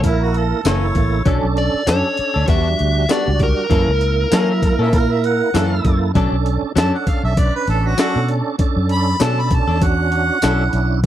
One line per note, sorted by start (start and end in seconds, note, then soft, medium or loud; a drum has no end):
0.00 0.52 A#1 medium
0.00 0.61 A#3 loud
0.00 0.61 E4 medium
0.00 kick medium
0.00 closed hi-hat medium
0.04 0.24 E4 medium
0.04 0.62 A#4 loud
0.23 0.34 F#4 medium
0.34 0.65 A4 medium
0.34 closed hi-hat medium
0.64 0.90 F#1 medium
0.64 0.85 E3 medium
0.64 1.22 A#3 medium
0.64 0.85 A#3 medium
0.64 0.85 C#4 medium
0.64 1.22 E4 medium
0.64 1.23 A4 loud
0.64 1.42 C#5 loud
0.64 snare loud
0.64 closed hi-hat medium
0.64 tambourine loud
0.68 0.86 A4 medium
0.95 1.21 A1 medium
0.95 kick medium
0.95 closed hi-hat medium
1.25 1.40 B1 loud
1.25 1.45 F#3 medium
1.25 1.83 C#4 medium
1.25 1.46 C#4 medium
1.25 1.83 D4 medium
1.25 1.46 D4 medium
1.25 1.84 A4 loud
1.25 1.46 A4 medium
1.25 kick loud
1.25 closed hi-hat medium
1.43 1.68 B1 medium
1.57 1.88 D5 medium
1.57 closed hi-hat medium
1.87 2.01 F#2 medium
1.87 2.06 F#3 medium
1.87 2.44 C#4 medium
1.87 2.07 C#4 medium
1.87 2.45 D4 medium
1.87 2.07 D4 medium
1.87 2.45 A4 medium
1.87 2.07 A4 medium
1.87 2.45 C#5 loud
1.87 snare loud
1.87 closed hi-hat medium
1.87 tambourine loud
2.17 muted fingered electric bass stroke soft
2.17 closed hi-hat medium
2.34 2.47 D2 medium
2.34 2.48 C#4 soft
2.34 2.47 D4 soft
2.34 2.48 A4 soft
2.47 2.74 E2 loud
2.47 2.67 G3 medium
2.47 3.05 G3 medium
2.47 2.68 B3 medium
2.47 3.06 D4 medium
2.47 2.68 D4 medium
2.47 3.06 F#4 medium
2.47 2.68 F#4 medium
2.47 3.11 E5 loud
2.47 kick medium
2.47 closed hi-hat medium
2.79 3.05 D2 medium
2.79 closed hi-hat medium
3.09 3.67 G3 medium
3.09 3.29 G3 medium
3.09 3.29 B3 medium
3.09 3.67 D4 medium
3.09 3.29 D4 medium
3.09 3.67 F#4 medium
3.09 3.29 F#4 medium
3.09 3.39 D5 medium
3.09 snare loud
3.09 closed hi-hat medium
3.09 tambourine loud
3.28 3.52 C#2 medium
3.39 5.51 A#4 medium
3.39 kick medium
3.39 closed hi-hat medium
3.70 3.85 F#2 medium
3.70 3.90 E3 medium
3.70 3.90 A#3 medium
3.70 4.28 A#3 medium
3.70 3.90 C#4 medium
3.70 4.28 E4 medium
3.70 3.91 A4 medium
3.70 4.29 A#4 medium
3.70 kick loud
3.70 closed hi-hat medium
3.88 4.24 C#2 medium
4.01 closed hi-hat medium
4.30 4.51 E3 medium
4.30 4.71 F#3 medium
4.30 4.89 A#3 medium
4.30 4.52 A#3 medium
4.30 4.52 C#4 medium
4.30 4.89 E4 medium
4.30 4.52 A4 medium
4.30 4.89 A#4 medium
4.30 4.48 A#4 medium
4.30 snare loud
4.30 closed hi-hat medium
4.30 tambourine loud
4.50 4.62 E5 medium
4.63 4.79 A#4 medium
4.63 kick medium
4.63 closed hi-hat medium
4.79 5.41 A#2 medium
4.79 4.97 A#3 soft
4.79 4.97 C#4 soft
4.79 4.96 A4 medium
4.79 4.93 E5 medium
4.93 5.50 A#3 medium
4.93 5.50 E4 medium
4.93 5.51 A#4 medium
4.93 5.13 A#4 loud
4.93 kick medium
4.93 closed hi-hat medium
5.12 5.24 E5 medium
5.24 6.00 F#5 medium
5.24 closed hi-hat medium
5.54 5.79 F#2 medium
5.54 5.74 E3 medium
5.54 6.11 A#3 medium
5.54 5.74 A#3 medium
5.54 5.74 C#4 medium
5.54 6.12 E4 medium
5.54 6.12 A4 loud
5.54 5.74 A4 medium
5.54 snare loud
5.54 closed hi-hat medium
5.54 tambourine loud
5.85 6.10 F#2 medium
5.85 kick medium
5.85 closed hi-hat medium
6.14 6.29 B1 medium
6.14 6.35 F#3 medium
6.14 6.72 C#4 medium
6.14 6.35 C#4 medium
6.14 6.72 D4 medium
6.14 6.35 D4 medium
6.14 6.73 A4 medium
6.14 6.36 A4 medium
6.14 kick medium
6.14 closed hi-hat medium
6.32 6.57 B1 medium
6.46 closed hi-hat medium
6.62 muted fingered electric bass stroke soft
6.76 6.90 F#2 medium
6.76 6.95 F#3 medium
6.76 7.33 C#4 medium
6.76 6.96 C#4 medium
6.76 7.34 D4 medium
6.76 6.96 D4 medium
6.76 7.34 A4 medium
6.76 6.96 A4 medium
6.76 6.93 A5 medium
6.76 snare loud
6.76 closed hi-hat medium
6.76 tambourine loud
6.94 7.06 F#5 medium
7.07 7.23 F5 medium
7.07 muted fingered electric bass stroke soft
7.07 kick medium
7.07 closed hi-hat medium
7.24 7.49 B1 medium
7.24 7.39 E5 medium
7.37 7.94 C#4 medium
7.37 7.95 D4 medium
7.37 7.95 B4 medium
7.37 7.53 D5 medium
7.37 kick loud
7.37 closed hi-hat medium
7.55 7.68 B4 medium
7.67 7.93 A1 medium
7.67 7.89 A4 medium
7.67 snare soft
7.67 closed hi-hat medium
7.87 7.99 F#4 medium
7.98 8.18 F#3 medium
7.98 8.56 C#4 medium
7.98 8.18 C#4 medium
7.98 8.56 D4 medium
7.98 8.18 D4 medium
7.98 8.29 F#4 medium
7.98 8.56 A4 medium
7.98 8.19 A4 medium
7.98 snare loud
7.98 closed hi-hat medium
7.98 tambourine loud
8.16 8.41 B2 medium
8.29 closed hi-hat medium
8.58 9.16 C#4 medium
8.58 9.17 D4 medium
8.58 9.17 A4 loud
8.58 kick medium
8.58 closed hi-hat medium
8.76 9.13 F#2 medium
8.89 9.24 B5 loud
8.89 closed hi-hat medium
9.19 9.60 B2 loud
9.19 9.40 F#3 medium
9.19 9.78 C#4 medium
9.19 9.40 C#4 medium
9.19 9.78 D4 medium
9.19 9.40 D4 medium
9.19 9.78 A4 medium
9.19 9.41 A4 medium
9.19 9.42 A5 medium
9.19 snare loud
9.19 closed hi-hat medium
9.19 tambourine loud
9.40 9.55 B5 medium
9.51 9.82 A5 medium
9.51 kick medium
9.51 closed hi-hat medium
9.67 10.30 E2 medium
9.67 9.86 C#4 soft
9.67 9.85 D4 soft
9.67 9.85 A4 soft
9.81 10.39 C#4 medium
9.81 10.39 D4 medium
9.81 10.39 F#4 medium
9.81 11.01 F#5 loud
9.81 kick medium
9.81 closed hi-hat medium
10.12 closed hi-hat medium
10.42 10.68 B1 medium
10.42 10.62 F#3 medium
10.42 11.00 C#4 medium
10.42 10.63 C#4 medium
10.42 11.00 D4 medium
10.42 10.63 D4 medium
10.42 11.01 E4 medium
10.42 10.63 A4 medium
10.42 snare loud
10.42 closed hi-hat medium
10.42 tambourine loud
10.73 11.06 B1 medium
10.73 closed hi-hat medium